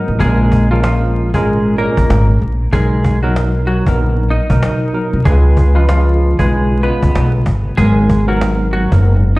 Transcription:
Already playing: G#2 F#3 B3 D#4 A#4 D#5
0.08 A1
0.18 A#1 A#2 G#3 C#4 G#4 A#4, cajon bass
0.52 cajon bass
0.71 A#2 F3 G#3 C#4 F4 A#4
0.83 F3 F4, cajon slap
1.15 cajon slap
1.34 G#1 A#2 G#3 C#4 G#4 A#4, cajon bass
1.46 cajon slap
1.77 A#2 G#3 A#3 C#4 A#4, cajon slap
1.97 A#1, cajon bass
2.10 G#1, cajon slap
2.41 A#1, cajon slap
2.73 B1 B2 F#3 G#3 D#4 G#4 A#4, cajon bass
3.04 cajon bass
3.23 B2 F#3 D#4 F#4 A#4
3.36 cajon slap
3.67 F#3 F#4, cajon slap
3.86 A#1 F#3 B3 D#4 A#4, cajon bass
3.99 cajon slap
4.30 D#4 D#5, cajon slap
4.49 B1 B2 F#3 D#4 A#4, cajon bass
4.63 cajon slap
4.93 B2 F#3 D#4 A#4, cajon slap
5.13 C2
5.25 C#2 C#3 G#3 F4 G#4 B4, cajon bass
5.57 cajon bass
5.74 C#3 F3 G#3 F4 B4
5.89 F3 F4, cajon slap
6.20 cajon slap
6.39 B1 C#3 G#3 F4 G#4 B4, cajon bass
6.51 cajon slap
6.71 cajon slap
6.83 C#3 G#3 B3 F4 B4, cajon slap
7.02 C#2, cajon bass
7.15 B1, cajon slap
7.46 G1, cajon bass
7.77 G#1 G#2 F#3 G#3 B3 G#4 A#4, cajon bass
8.10 cajon bass
8.27 G#2 F#3 B3 F#4 A#4
8.41 cajon slap
8.73 F#3 F#4, cajon slap
8.92 F#1 G#2 F#3 B3 A#4, cajon bass
9.04 cajon slap
9.35 cajon slap

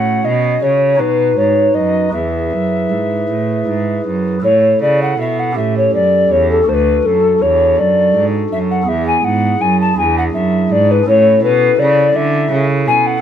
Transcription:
Already playing: A2 C#4 F#4 C#5 F#5
0.25 B2 D#5
0.62 C#3 C#5
0.96 B2 D#4 F#4 B4
1.00 B2
1.37 G#2 C#5
1.75 F#2 D#5
2.09 E4 G#4 B4
2.14 E2 E5
2.52 F#2
2.91 G#2
3.29 A2
3.68 G#2
4.06 F#2
4.41 A2 E4 A4 C#5
4.45 A2
4.81 C#3 D5
5.02 F#5
5.19 B2 E5
5.39 F#5
5.52 C#4 G4 A4
5.56 A2 E5
5.77 C#5
5.93 F#2 D5
6.30 E2 C#5
6.51 A4
6.63 D4 F#4 A4
6.67 D2 C5
6.74 B4
7.04 F#2 A4
7.41 E2 C#5
7.77 F#2 D5
8.15 G#2
8.50 F#2 E5
8.71 F#5
8.82 B3 E4 G#4
8.87 E2 E5
9.07 G#5
9.24 G#2 F#5
9.60 F#2 G#5
9.81 A5
9.93 D4 E4 G#4
9.98 E2 G#5
10.18 F#5
10.34 F#2 E5
10.71 G#2 D5
10.91 B4
11.04 C#4 E4 A4
11.08 A2 C#5
11.42 B2 B4
11.78 C#3 D5
12.15 D3 E5
12.51 C#3
12.87 B2 G#5
13.06 F#5

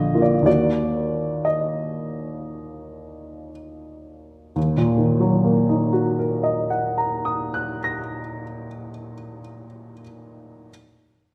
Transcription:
Already playing: A#1 D3 D#5
0.15 A#3 F4
0.22 D5
0.42 D#2 D#3 A#3 D5
0.47 F#4
1.45 D#5
4.56 D#2
4.77 A#2
4.98 D#3
5.20 F#3
5.44 A#3
5.69 D#4
5.93 F#4
6.19 A#4
6.43 D#5
6.70 F#5
6.98 A#5
7.25 D#6
7.54 F#6
7.84 A#6

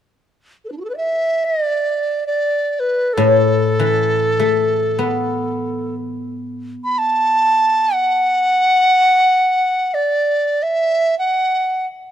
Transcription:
0.65 A4
0.69 D4 B4
0.78 E4 F#4
0.85 A4
0.90 B4
0.94 D5 E5
1.45 D#5
1.65 D5
2.27 D5
2.80 B4
3.13 A2 A4
3.79 E3
4.39 A3
4.99 B3
6.84 B5
6.98 A5
7.94 F#5
9.94 D5
10.63 E5
11.19 F#5

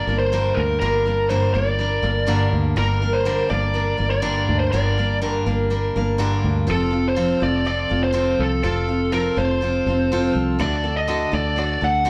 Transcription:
Already playing: D5
0.07 G1 G3 A#3 D4 A#4
0.19 C5
0.32 G2 D3 G3 A#3 D4 A#4
0.55 D2 A#4
0.80 G1 G2 D3 G3 A#3 D4 A#4
1.05 G3 A#3 D4 A#4
1.29 G2 D3 G3 A#3 D4 A#4 C5
1.54 G1 G3 A#3 D4 A#4 D5
1.79 G3 A#3 D4 A#4
2.02 G1 G3 A#3 D4 A#4
2.27 G2 D3 G3 A#3 D4 A#4
2.53 D2
2.76 G1 G2 D3 G3 A#3 D4 A#4
3.02 G3 A#3 D4 A#4
3.13 C5
3.25 G2 D3 G3 A#3 D4 A#4
3.49 G1 G3 A#3 D4 A#4 D5
3.74 G3 A#3 D4 A#4
3.97 G1 G3 A#3 D4 A#4
4.11 D5
4.22 G2 D3 G3 A#3 D4 A#4
4.49 D2
4.59 C5
4.72 G1 G2 D3 G3 A#3 D4 A#4 D5
4.98 G3 A#3 D4 A#4
5.21 G2 D3 G3 A#3 D4 A#4
5.46 G1 G3 A#3 D4 A#4
5.70 G3 A#3 D4 A#4
5.96 G1 G3 A#3 D4 A#4
6.18 G2 D3 G3 A#3 D4 A#4
6.44 D2
6.67 F1 F3 C4 F4 A4
6.71 A4
6.91 C4 F4 A4
7.08 C5
7.16 F3 C4 F4 A4
7.40 F1 C4 F4 A4 D5
7.65 F3 C4 F4 A4 D5
7.89 F1 C4 F4 A4
8.04 C5
8.13 F3 C4 F4 A4
8.39 C2 A4
8.63 F1 F3 C4 F4 A4
8.88 C4 F4 A4
9.12 F3 C4 F4 A4 A#4
9.36 F1 C4 F4 A4 C5
9.61 F3 C4 F4 A4
9.86 F1 C4 F4 A4
10.12 F3 C4 F4 A4
10.35 C2
10.59 D2 D3 A3 D4 F#4 A4 D5
10.84 D4 F#4 A4
10.97 D#5
11.08 D3 A3 D4 F#4 A4
11.32 D2 D4 F#4 A4 D5
11.56 A3 D4 F#4 A4 D5
11.81 D2 D4 F#4 A4 F#5
12.05 D3 A3 D4 F#4 A4

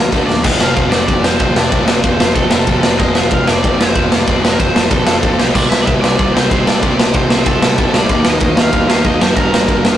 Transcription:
Already playing: D2 D3 F3 A3
0.11 D2 D3 F3 A3 D4, kick, open hi-hat
0.27 D#2 D3 F3 A3 D5, snare
0.44 F1 F2 C3 F3 A3 C4 F4 D#5, kick, crash
0.60 F1 F5, snare
0.74 F1 F5, kick, ride
0.90 F1 F2 C3 F3 D5, snare
1.08 F1, kick, ride
1.23 F1 F2 F3 A3 C4 F4 C5, snare
1.27 C3
1.40 F1 F2 C3 F3 A3, kick, ride
1.44 C4 F4
1.55 F1 D5, snare
1.72 F1 F2 C3 F3 A3 C4 F4, kick, ride
1.88 F1, snare
2.03 F1 C5, kick, ride
2.18 F1 F2 C3 F3, snare
2.35 F1 A4, kick, ride
2.51 F1 F3 A3 C4 F4, snare
2.55 F2 C3
2.67 F1 F2 C3 F3 A3, kick, ride
2.71 C4 F4
2.83 F1 D5, snare
2.99 F1 F2 C3 F3 D#5, kick, ride
3.04 A3 C4 F4
3.15 F1 F5, snare
3.31 F1 F5, kick, ride
3.46 F1 F2 C3 F3 D5, snare
3.64 F1, kick, ride
3.79 F1 F3 A3 C4 F4 C5, snare
3.84 F2 C3
3.95 F1 F2 C3 F3, kick, ride
3.99 A3 C4 F4
4.10 F1 D5, snare
4.27 F1 F2 C3 F3 A3 C4, kick, ride
4.32 F4
4.43 F1, snare
4.52 A#4
4.59 F1 C5, kick, ride
4.74 F1 C3 F3, snare
4.78 F2
4.91 F1 A4, kick, ride
5.06 F1 F3 A3 C4 F4, snare
5.10 F2 C3
5.23 F1 F2 C3 F3 A3 C4, kick, ride
5.27 F4
5.39 B1 C5, snare
5.54 C2 C3 G3 C4 D5, kick, crash
5.59 E4
5.70 C2 E5, snare
5.82 D5
5.86 C2 E5, kick, ride
6.01 C2 G3 C4 D5, snare
6.06 C3
6.19 C2, kick, ride
6.34 C2 C4 E4 C5, snare
6.38 C3 G3
6.51 C2 C3 G3 C4 E4, kick, ride
6.67 C2 D5, snare
6.82 C2 C3 G3 C4 E4, kick, ride
6.99 C2, snare
7.14 C2 C5, kick, ride
7.30 C2 C3 G3 C4, snare
7.46 C2 A4, kick, ride
7.60 C2 E4, snare
7.64 C3 G3 C4
7.78 C2 C3 G3 C4 E4, kick, ride
7.94 D2 D5, snare
8.09 D#2 D#3 G3 A#3 D#4, kick, ride
8.24 D#2, snare
8.30 D#5
8.40 D#2, kick, ride
8.56 D#2 D#3 A#3 D#4, snare
8.62 F5
8.72 D#2, kick, ride
8.87 D#2 G3 A#3 D#4, snare
8.91 D#3 F5
9.04 D#2 D#3 G3 A#3 D#4 D#5, kick, ride
9.21 F#2 C5, snare
9.36 G1 G2 D3 G3 A#3 A#4, kick, ride
9.40 D4
9.52 G1, snare
9.68 G1, kick, ride
9.82 G1 G2 D3 G3, snare

